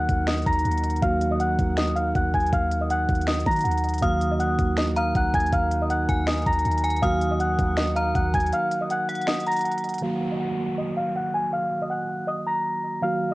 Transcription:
Already playing: D#3 F#3 A#3 D#4 F#4 A#4 F#5 F#6
0.09 D#2, kick, closed hi-hat
0.27 D#5 D#6, finger snap, snare, closed hi-hat
0.33 closed hi-hat
0.38 closed hi-hat
0.42 closed hi-hat
0.46 D#2 A#5 A#6, kick, closed hi-hat
0.53 closed hi-hat
0.59 closed hi-hat
0.65 D#2, closed hi-hat
0.71 closed hi-hat
0.78 closed hi-hat
0.84 closed hi-hat, open hi-hat
0.90 closed hi-hat
0.96 closed hi-hat
1.01 D#2 D#3 F#3 A#3 F#4 A#4 F5 F6, kick, closed hi-hat
1.21 closed hi-hat
1.31 D#5 D#6
1.40 F#5 F#6, closed hi-hat
1.59 D#2, kick, closed hi-hat
1.77 D#5 D#6, finger snap, snare, closed hi-hat
1.88 closed hi-hat
1.96 F5 F6, closed hi-hat
2.15 D#2 F#5 F#6, kick, closed hi-hat
2.34 D#2 G#5 G#6, kick, closed hi-hat
2.40 closed hi-hat
2.46 closed hi-hat
2.53 D#2 F5 F6, kick, closed hi-hat
2.71 closed hi-hat
2.81 D#5 D#6
2.90 F#5 F#6, closed hi-hat
3.09 D#2, kick, closed hi-hat
3.15 closed hi-hat
3.21 closed hi-hat
3.27 D#5 D#6, finger snap, snare, closed hi-hat
3.34 closed hi-hat
3.40 closed hi-hat
3.46 D#3 A#5 A#6, kick, closed hi-hat
3.51 closed hi-hat
3.56 closed hi-hat
3.59 closed hi-hat
3.61 F#5, closed hi-hat
3.65 D#2, closed hi-hat
3.71 closed hi-hat
3.78 closed hi-hat
3.84 closed hi-hat
3.89 closed hi-hat
3.94 closed hi-hat
3.98 D#3 F#3, closed hi-hat
4.02 D#2 A#3 D#4 F#4 A#4 F5 D#6 F6, kick, closed hi-hat
4.21 closed hi-hat
4.32 D#5 D#6
4.39 F#5 F#6, closed hi-hat
4.59 D#2, kick, closed hi-hat
4.77 D#5 D#6, finger snap, snare, closed hi-hat
4.88 closed hi-hat
4.96 F5 A#5 F6, closed hi-hat
5.15 C#2 F#5 F#6, kick, closed hi-hat
5.34 D#2 G#5 G#6, kick, closed hi-hat
5.40 closed hi-hat
5.46 closed hi-hat
5.53 D#2 F5 F6, kick, closed hi-hat
5.71 closed hi-hat
5.82 D#5 D#6
5.90 F#5 F#6, closed hi-hat
6.09 D#2 G#5, kick, closed hi-hat
6.27 D#5 D#6, finger snap, snare, closed hi-hat
6.33 closed hi-hat
6.38 closed hi-hat
6.42 closed hi-hat
6.46 D#2 A#5 A#6, kick, closed hi-hat
6.53 closed hi-hat
6.59 closed hi-hat
6.65 D#2, closed hi-hat
6.71 closed hi-hat
6.78 closed hi-hat
6.84 G#5, closed hi-hat, open hi-hat
6.90 closed hi-hat
6.96 closed hi-hat
7.01 D#2 D#3 F#3 A#3 F#4 A#4 F5 F#5 D#6 F6, kick, closed hi-hat
7.21 closed hi-hat
7.31 D#5 D#6
7.40 F#5 F#6, closed hi-hat
7.59 D#2, kick, closed hi-hat
7.77 D#5 D#6, finger snap, snare, closed hi-hat
7.88 closed hi-hat
7.96 F5 A#5 F6, closed hi-hat
8.15 D#2 F#5 F#6, kick, closed hi-hat
8.34 D#2 G#5 G#6, kick, closed hi-hat
8.40 closed hi-hat
8.46 closed hi-hat
8.53 F5 F6, closed hi-hat
8.71 closed hi-hat
8.81 D#5 D#6
8.90 F#5 F#6, closed hi-hat
9.09 F#5, closed hi-hat
9.15 closed hi-hat
9.21 closed hi-hat
9.27 D#5 D#6, finger snap, snare, closed hi-hat
9.34 closed hi-hat
9.40 closed hi-hat
9.46 A#5 A#6, closed hi-hat
9.51 closed hi-hat
9.56 closed hi-hat
9.59 closed hi-hat
9.61 F#5, closed hi-hat
9.65 closed hi-hat
9.71 closed hi-hat
9.78 closed hi-hat
9.84 closed hi-hat
9.89 closed hi-hat
9.94 closed hi-hat
9.98 D#3 F#3, closed hi-hat
10.02 A#3 F#4 F5 F6, downlifter
10.32 D#5 D#6
10.40 F#5 F#6
10.78 D#5 D#6
10.97 F5 F6
11.16 F#5 F#6
11.34 G#5 G#6
11.53 F5 F6
11.82 D#5 D#6
11.90 F#5 F#6
12.27 D#5 D#6
12.46 A#5 A#6
13.02 D#3 F#3 A#3 F#4 F5 F6, swell

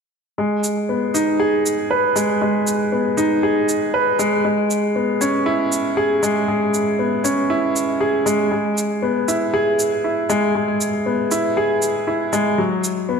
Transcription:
0.38 G#3
0.64 shaker
0.89 B3
1.14 D#4, shaker
1.40 G#4
1.66 shaker
1.91 B4
2.16 G#3, shaker
2.42 G#3
2.67 shaker
2.92 B3
3.17 D#4, shaker
3.43 G#4
3.69 shaker
3.94 B4
4.19 G#3, shaker
4.45 G#3
4.71 shaker
4.96 B3
5.21 C#4, shaker
5.46 E4
5.72 shaker
5.97 G#4
6.23 G#3, shaker
6.48 G#3
6.74 shaker
6.99 B3
7.24 C#4, shaker
7.50 E4
7.76 shaker
8.01 G#4
8.26 G#3, shaker
8.52 G#3
8.78 shaker
9.02 B3
9.28 E4, shaker
9.54 G#4
9.79 shaker
10.04 E4
10.30 G#3, shaker
10.55 G#3
10.81 shaker
11.06 B3
11.31 E4, shaker
11.57 G#4
11.82 shaker
12.07 E4
12.33 G#3, shaker
12.58 F#3
12.84 shaker
13.09 B3

